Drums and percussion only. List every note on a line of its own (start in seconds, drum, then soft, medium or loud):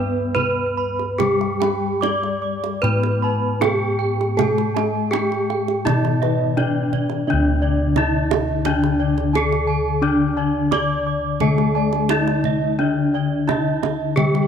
0.36 kendang slap soft
0.36 kendang low medium
0.99 kendang slap soft
1.20 kendang high soft
1.20 kendang low medium
1.41 kendang slap soft
1.62 kendang slap soft
1.62 kendang high medium
2.03 kendang high medium
2.23 kendang slap soft
2.64 kendang slap soft
2.84 kendang low medium
3.03 kendang slap soft
3.62 kendang slap soft
3.62 kendang high medium
3.62 kendang low soft
4.21 kendang slap soft
4.39 kendang high soft
4.39 kendang low medium
4.58 kendang slap soft
4.77 kendang high medium
5.13 kendang high medium
5.32 kendang slap soft
5.50 kendang slap soft
5.68 kendang slap soft
5.87 kendang high medium
5.87 kendang low soft
6.05 kendang slap soft
6.23 kendang slap soft
6.58 kendang slap soft
6.58 kendang low medium
6.93 kendang low soft
7.10 kendang slap soft
7.96 kendang high medium
7.96 kendang low medium
8.31 kendang high soft
8.31 kendang low medium
8.65 kendang high soft
8.65 kendang low medium
8.84 kendang slap soft
9.18 kendang slap soft
9.35 kendang high soft
9.52 kendang slap soft
10.72 kendang high medium
10.72 kendang low medium
11.40 kendang low medium
11.58 kendang slap soft
11.93 kendang slap soft
12.09 kendang high medium
12.27 kendang slap soft
12.44 kendang low medium
13.49 kendang high medium
13.49 kendang low medium
13.83 kendang high medium
13.83 kendang low soft
14.17 kendang high soft
14.17 kendang low medium
14.35 kendang slap soft